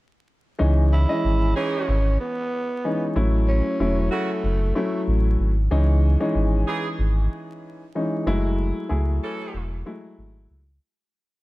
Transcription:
0.59 C#2 E3 G#3 C#4 D#4
0.93 E4
1.09 E3 G#3 C#4 D#5
1.25 G#1
1.56 E3 C#4 D#4 G#4
1.88 G#1
2.20 B3
2.84 E3 G#3 C#4 D#4
3.15 A1 F#3 A3 C#4 E4
3.48 C#4
3.80 E1 F#3 A3 C#4 E4
4.11 C#3 A3 F#4
4.44 F#1
4.75 F#3 A3 C#4 E4
5.08 A1
5.39 G#1
5.71 C#2 E3 G#3 C#4 D#4
6.20 E3 G#3 C#4 D#4
6.35 G#1
6.67 E3 D#4 G#4
6.99 G#1
7.95 E3 G#3 C#4 D#4
8.27 F#1 F#3 G#3 A3 E4
8.89 C#2 F#3 A3 E4 G#4
9.23 E3 C#4 A4
9.54 E1
9.86 F#3 G#3 A3 E4
10.18 G#1
10.50 C#2

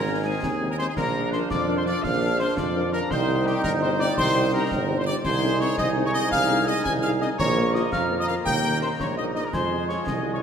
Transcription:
Already playing: G#1 D#3 C4 D#4 A#4 G#5 A#5
0.08 G#3 C4 D#4
0.25 G#3 C4 D#4 G#4 G#5
0.43 D#2, concert bass drum, snare
0.61 G#3 C4 D#4
0.70 A#4 A#5
0.78 G#3 C4 D#4 C5 C6, snare
0.88 G#4 G#5
0.97 A#1 F3 D4 A#4 F5 A#5, concert bass drum, snare, crash
1.16 F3 D4 A#4
1.32 F3 D4 A#4 C5 C6, snare
1.50 F2 D5 D6, concert bass drum, snare
1.68 F3 D4 A#4
1.77 C5 C6
1.86 F3 D4 A#4 D5 D6, snare
2.03 A#1 F5 F6, concert bass drum, snare
2.23 F3 D4 A#4
2.39 F3 D4 A#4 C5 C6
2.57 F2 D5 D6, concert bass drum, snare
2.76 F3 D4 A#4
2.93 F3 D4 A#4 A#5, snare
3.11 C2 G3 D#4 C5 G5 C6, concert bass drum, snare
3.29 C4 D#4 G4
3.46 C4 D#4 G4 G5, snare
3.63 G1 A#4 A#5, concert bass drum, snare
3.82 C4 D#4 G4 C5 C6
4.00 C4 D#4 G4 D5 D6, snare
4.17 C2 C5 C6, concert bass drum, snare
4.35 C4 D#4 G4
4.53 C4 D#4 G4 A#4 A#5
4.72 G1, concert bass drum, snare
4.90 C4 D#4 G4
4.98 C5 C6
5.07 C4 D#4 G4 D5 D6
5.25 C2 G#3 D#4 C5 G#5 C6, concert bass drum, snare, crash
5.43 C4 D#4 G#4
5.60 C4 D#4 G#4 C#5 C#6, snare
5.78 C2 D#5 D#6, concert bass drum, snare
5.97 C4 D#4 G#4
6.06 C#5 C#6
6.14 C4 D#4 G#4 D#5 D#6, snare
6.32 C2 F5 F6, concert bass drum, snare
6.49 C4 D#4 G#4
6.67 C4 D#4 G#4 D#5 D#6
6.84 C2 G#5 G#6, concert bass drum, snare
7.03 C4 D#4 G#4 F5 F6
7.21 C4 D#4 G#4 D#5 D#6, snare
7.39 A#1 F3 A#3 F4 C#5 A#5 C#6, concert bass drum, snare
7.57 A#3 F4 A#4
7.74 A#3 F4 A#4 D#5 D#6, snare
7.92 F2 F5 F6, concert bass drum, snare
8.11 A#3 F4 A#4
8.19 D#5 D#6
8.28 A#3 F4 A#4 F5 F6, snare
8.46 D#2 D#3 D#4 G5 G6, concert bass drum, snare
8.64 A#3 D#4 A#4
8.82 A#3 D#4 A#4 C5 C6
9.00 A#1 C#5 C#6, concert bass drum, snare
9.17 A#3 D#4 A#4 D#5 D#6
9.35 A#3 D#4 A#4 D#5 D#6, snare
9.45 A#4 A#5
9.53 F2 F3 G#3 F4 C5 G#5 C6, concert bass drum, snare, crash
9.71 G#3 C4 F4
9.88 G#3 C4 F4 C#5 C#6, snare
10.07 C2 D#5 D#6, concert bass drum, snare
10.25 G#3 C4 F4
10.33 C#5 C#6

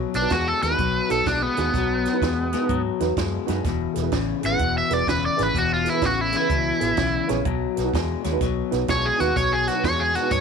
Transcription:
Already playing: B2 F#3
0.13 B1 D4 F#4 B4, snare, closed hi-hat
0.21 B3 D#4 F#4 B4
0.30 E2 B2 G#3 F#4, kick, snare, closed hi-hat
0.48 A4
0.61 D#2 B2 G#3 F#4 B4, snare, closed hi-hat
0.69 B3 D#4 F#4 B4
0.79 B1 B2 F#3, kick, closed hi-hat
1.08 B1 B3 D#4 F#4 A4, snare, closed hi-hat
1.26 B1 B2 G#3 D4, kick, snare, closed hi-hat
1.42 B3
1.56 D#2 B2 G#3 B3 D#4 F#4 G#4, snare, closed hi-hat
1.74 B1 B2 F#3, kick, snare, closed hi-hat
2.05 F#4 B4, snare, closed hi-hat
2.12 B3 D#4 F#4 B4
2.22 E2 B2 G#3, kick, snare, closed hi-hat
2.51 B2 G#3 F#4 B4, snare, closed hi-hat
2.60 B3 D#4 F#4 B4
2.69 G#2 B2 F#3, kick, closed hi-hat
2.99 E2 B3 D#4 F#4 B4, snare, closed hi-hat
3.17 F#2 B2 G#3, kick, snare, closed hi-hat
3.46 F#2 B2 G#3 B3 D#4 F#4 B4, snare, closed hi-hat
3.65 E1 E2 B2, kick, snare, closed hi-hat
3.94 E1 G#4 B4, snare, closed hi-hat
4.01 B3 E4 G#4 B4
4.12 A1 E2 C#3, kick, snare, closed hi-hat
4.41 G#1 E2 C#3 G#4 B4, snare, closed hi-hat
4.46 F#5
4.50 B3 E4 G#4 B4
4.59 E1 E2 B2, kick, closed hi-hat
4.78 E5
4.90 E1 B3 E4 G#4 B4 D5, snare, closed hi-hat
5.07 E1 E2 C#3 B4, kick, snare, closed hi-hat
5.26 D5
5.36 G#1 E2 C#3 B3 E4 G#4 B4, snare, closed hi-hat
5.43 B4
5.55 E1 E2 B2 F#4, kick, closed hi-hat
5.74 F4
5.84 G#4 B4, snare, closed hi-hat
5.90 B3 E4
5.94 E4 G#4 B4
6.02 A1 E2 C#3 F#4, kick, snare, closed hi-hat
6.21 E4
6.32 E2 C#3 G#4 B4, snare, closed hi-hat
6.37 B3 E4
6.41 G#4 B4
6.49 C#2 E2 B2, kick, closed hi-hat
6.79 A1 B3 E4 G#4 B4, snare, closed hi-hat
6.97 B1 E2 C#3, kick, snare, closed hi-hat
7.27 A#1 E2 C#3 B3 E4 G#4 C#5, snare, closed hi-hat
7.45 B1 B2 F#3, kick, closed hi-hat
7.74 B1 F#4 B4, snare, closed hi-hat
7.84 B3 D#4 F#4 B4
7.94 E2 B2 G#3, kick, snare, closed hi-hat
8.22 D#2 B2 G#3 F#4 C#5, snare, closed hi-hat
8.31 B3 D#4 F#4 B4
8.41 B1 B2 F#3, kick, snare, closed hi-hat
8.70 B1 B3 D#4 F#4 B4, snare, closed hi-hat
8.88 B1 B2 G#3 C#5, kick, snare, closed hi-hat
9.06 G#4
9.17 D#2 B2 G#3 B3 D#4 F#4 B4, snare, closed hi-hat
9.36 B1 B2 F#3 C#5, kick, snare, closed hi-hat
9.53 G#4
9.65 F#4 B4, snare, closed hi-hat
9.74 B3 D#4 F#4 B4
9.83 E2 B2 G#3 C#5, kick, snare, closed hi-hat
10.00 G#4
10.14 B2 G#3 F#4 B4, snare, closed hi-hat
10.22 B3 D#4 F#4 B4
10.31 G#2 B2 F#3 C#5, kick, snare, closed hi-hat

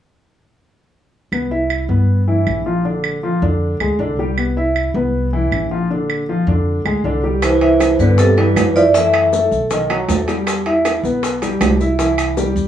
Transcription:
1.32 C2 B3 B4, claves
1.51 E4 E5
1.70 claves
1.89 G2 B3 B4
2.28 E3 E4
2.47 A#1, claves
2.66 F3 F4
2.85 D3 D4
3.04 claves
3.23 F3 F4
3.42 F2 D3 D4
3.80 D2 G#3 G#4, claves
3.99 C2 D3 D4
4.19 G3 G4
4.37 B3 B4, claves
4.57 E4 E5
4.76 claves
4.94 C2 B3 B4
5.33 E3 E4
5.52 A#1, claves
5.71 F3 F4
5.90 D3 D4
6.10 claves
6.29 F3 F4
6.47 F2 D3 D4
6.85 D2 G#3 G#4, claves
7.04 C2 D3 D4
7.24 G3 G4
7.42 E3 C5, high bongo, high timbale, claves, maracas
7.61 E4 E5, high bongo, high timbale
7.80 high bongo, high timbale, low timbale, claves, maracas
7.99 G2 D3 B3 B4, maracas
8.18 C3 A4, high bongo, high timbale, maracas
8.37 E3 G3 G4 B4, high bongo, high timbale
8.56 F#2, high bongo, low bongo, high timbale, low timbale, claves, maracas
8.75 F3 E4 D5 E5, high bongo, maracas
8.94 E3 A3 E4 E5, high bongo, high timbale, maracas
9.14 high bongo, high timbale, claves
9.33 A3 A4, high bongo, low timbale, maracas
9.51 B1, maracas
9.71 D#3 D#4, high bongo, high timbale, maracas
9.90 F#3 F#4, high bongo, high timbale, claves
10.08 E2 A3 A4, high bongo, low bongo, high timbale, low timbale, maracas
10.28 G3 G4, high bongo, high timbale, maracas
10.47 high bongo, high timbale, claves, maracas
10.66 E4 E5, high bongo, high timbale
10.85 high bongo, high timbale, low timbale, claves, maracas
11.03 B1 B3 B4, maracas
11.23 high bongo, high timbale, maracas
11.42 G3 G4, high bongo, high timbale, maracas
11.61 C2, high bongo, low bongo, high timbale, low timbale, claves, maracas
11.80 E4 E5, high bongo, maracas
11.99 E3 E4, high bongo, high timbale, maracas
12.18 high bongo, high timbale, claves, maracas
12.37 G3 G4, high bongo, low timbale, maracas
12.56 E2, maracas

